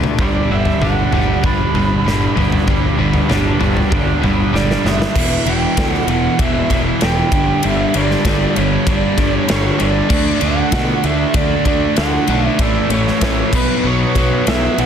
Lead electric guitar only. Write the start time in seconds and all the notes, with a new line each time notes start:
0.21 D5
0.53 E5
0.83 F#5
1.46 B5
4.54 D5
4.87 E5
5.49 G5
5.90 F#5
6.10 F#5
6.40 E5
6.71 E5
7.04 G5
7.65 E5
7.97 D5
8.56 C#5
8.88 D5
9.33 C#5
9.50 C#5
9.82 D5
10.42 F#5
11.05 E5
11.35 D5
11.66 D5
11.97 F#5
12.46 E5
12.61 D5
12.91 C#5
13.54 B4
13.87 C#5
14.48 E5
14.80 F#5